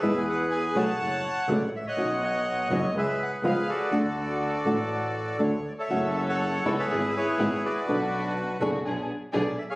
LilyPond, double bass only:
\new Staff \with { instrumentName = "Double bass" } { \clef bass \time 4/4 \key fis \minor \tempo 4 = 123 e,4. b,,8 fis,,8 r8 cis,8 a,,8 | b,,4. fis,,8 cis,8 r8 cis,8 r8 | d,4. a,,4. d,8 r8 | fis,,4. cis,8 gis,,8 r8 gis,,8 r8 |
b,,4. fis,,8 b,,8 r8 b,,8 r8 | }